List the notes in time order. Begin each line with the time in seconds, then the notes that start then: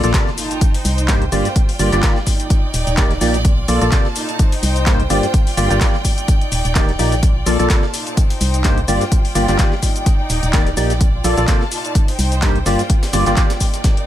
Already playing: F4, impact
0.00 A#1 A#2 A#3 F4 A4 D5 A5, closed hi-hat, shaker
0.14 C3 A#3 F4 A4 D5, kick, snare, clap, closed hi-hat, tambourine, shaker
0.27 snare
0.38 D#4, open hi-hat, tambourine, shaker
0.49 G5, closed hi-hat, shaker
0.61 kick, closed hi-hat, tambourine, shaker
0.74 C5, closed hi-hat, open hi-hat
0.85 C2, open hi-hat, tambourine, shaker
0.98 closed hi-hat, shaker
1.08 G2 A#3 D#4 G4 C5, kick, snare, clap, closed hi-hat, tambourine, shaker
1.22 closed hi-hat
1.32 G1 G2 A#3 F4 G4 D5, open hi-hat, tambourine, shaker
1.45 snare, closed hi-hat, shaker
1.56 kick, closed hi-hat, tambourine, shaker
1.69 open hi-hat
1.75 D5
1.79 G1 G2 A#3 F4 G4 D5, open hi-hat, tambourine, shaker
1.92 G1 G2 A#3 F4 G4 D5, clap, closed hi-hat, shaker
2.03 D#3 A#3 F4 G4 D5, kick, snare, clap, closed hi-hat, tambourine, shaker
2.16 snare
2.27 D#4, kick, open hi-hat, tambourine, shaker
2.40 closed hi-hat, shaker
2.50 kick, closed hi-hat, tambourine, shaker
2.74 D#1, snare, open hi-hat, tambourine, shaker
2.87 D#1, closed hi-hat, shaker
2.97 D#3 A#3 D#4 G4 D5, kick, snare, clap, closed hi-hat, tambourine, shaker
3.11 snare, closed hi-hat
3.21 A#1 A#2 A#3 D#4 G4 D5, snare, open hi-hat, tambourine, shaker
3.34 snare, closed hi-hat, shaker
3.45 F4, kick, closed hi-hat, tambourine, shaker
3.68 A#1 A#2 A#3 F4 A4 D5, open hi-hat, tambourine, shaker
3.78 A#1 A#2 F4 A4 D5 A5, closed hi-hat
3.82 A#3, shaker
3.92 C3 A#3 F4 A4 D5, kick, snare, clap, closed hi-hat, tambourine, shaker
4.05 snare
4.16 D#4, open hi-hat, tambourine, shaker
4.29 closed hi-hat, shaker
4.39 C5, kick, closed hi-hat, tambourine, shaker
4.52 closed hi-hat, open hi-hat
4.59 G5
4.63 C2, open hi-hat, tambourine, shaker
4.76 closed hi-hat, shaker
4.86 G2 A#3 D#4 G4 C5, kick, snare, clap, closed hi-hat, tambourine, shaker
5.00 closed hi-hat
5.10 G1 G2 A#3 F4 G4 D5, open hi-hat, tambourine, shaker
5.23 snare, closed hi-hat, shaker
5.34 kick, closed hi-hat, tambourine, shaker
5.47 D5, open hi-hat
5.57 G1 G2 A#3 F4 G4 D5, open hi-hat, tambourine, shaker
5.70 G1 G2 A#3 F4 G4 D5, clap, closed hi-hat, shaker
5.81 D#3 A#3 F4 G4 D5, kick, snare, clap, closed hi-hat, tambourine, shaker
5.94 snare
6.05 D#4, kick, open hi-hat, tambourine, shaker
6.18 closed hi-hat, shaker
6.28 kick, closed hi-hat, tambourine, shaker
6.41 closed hi-hat
6.52 D#1, open hi-hat, shaker
6.65 D#1, closed hi-hat, shaker
6.75 D#3 A#3 D#4 G4 D5, kick, snare, clap, closed hi-hat, tambourine, shaker
6.89 snare, closed hi-hat
6.99 A#1 A#2 A#3 D#4 G4 D5, snare, open hi-hat, tambourine, shaker
7.12 snare, closed hi-hat, shaker
7.23 F4, kick, closed hi-hat, tambourine, shaker
7.46 A#1 A#2 A#3 F4 A4 D5, open hi-hat, tambourine, shaker
7.56 A#1 A#2 A#3 F4 A4 D5 A5
7.60 closed hi-hat, shaker
7.70 C3 A#3 A4 D5, kick, snare, clap, closed hi-hat, tambourine, shaker
7.83 snare
7.94 D#4, open hi-hat, tambourine, shaker
8.07 closed hi-hat, shaker
8.15 C5 G5, kick, closed hi-hat, tambourine, shaker
8.30 closed hi-hat, open hi-hat
8.41 C2, open hi-hat, tambourine, shaker
8.54 closed hi-hat, shaker
8.64 G2 A#3 D#4 G4 C5, kick, snare, clap, closed hi-hat, tambourine, shaker
8.78 closed hi-hat
8.88 G1 G2 A#3 F4 G4 D5, open hi-hat, tambourine, shaker
9.01 snare, closed hi-hat, shaker
9.11 D5, kick, closed hi-hat, tambourine, shaker
9.25 open hi-hat
9.35 G1 G2 A#3 F4 G4 D5, open hi-hat, tambourine, shaker
9.48 G1 G2 A#3 F4 G4 D5, clap, closed hi-hat, shaker
9.59 D#3 G4 D5, kick, snare, clap, closed hi-hat, tambourine, shaker
9.72 snare
9.82 D#4, kick, open hi-hat, tambourine, shaker
9.96 closed hi-hat, shaker
10.06 kick, closed hi-hat, tambourine, shaker
10.30 D#1, snare, open hi-hat, tambourine, shaker
10.43 D#1, closed hi-hat, shaker
10.53 D#3 A#3 D#4 G4 D5, kick, snare, clap, closed hi-hat, tambourine, shaker
10.67 snare, closed hi-hat
10.77 A#1 A#2 A#3 D#4 G4 D5, snare, open hi-hat, tambourine, shaker
10.90 snare, closed hi-hat, shaker
11.01 F4, kick, closed hi-hat, tambourine, shaker
11.24 A#1 A#2 A#3 F4 A4 D5, open hi-hat, tambourine, shaker
11.33 A5
11.37 A#1 A#2 A#3 F4 A4 D5, closed hi-hat, shaker
11.48 C3 A#3 F4 A4 D5, kick, snare, clap, closed hi-hat, tambourine, shaker
11.61 snare
11.72 D#4, open hi-hat, tambourine, shaker
11.85 closed hi-hat, shaker
11.95 kick, closed hi-hat, tambourine, shaker
12.08 C5, closed hi-hat, open hi-hat
12.15 G5
12.19 C2, open hi-hat, tambourine, shaker
12.32 closed hi-hat, shaker
12.42 G2 A#3 D#4 G4 C5, kick, snare, clap, closed hi-hat, tambourine, shaker
12.56 closed hi-hat
12.66 G1 G2 A#3 F4 G4 D5, snare, open hi-hat, tambourine, shaker
12.79 snare, closed hi-hat, shaker
12.90 D5, kick, closed hi-hat, tambourine, shaker
13.03 snare, open hi-hat, tambourine
13.13 G1 G2 A#3 F4 G4 D5, snare, open hi-hat, tambourine, shaker
13.26 G1 G2 A#3 F4 G4 D5, snare, clap, closed hi-hat, shaker
13.36 D#3 A#3 F4 G4 D5, kick, snare, clap, closed hi-hat, tambourine, shaker
13.50 snare, closed hi-hat, tambourine
13.60 D#4, kick, snare, open hi-hat, shaker
13.74 snare, closed hi-hat, tambourine, shaker
13.84 A#4, kick, snare, closed hi-hat, tambourine, swell, shaker
13.97 closed hi-hat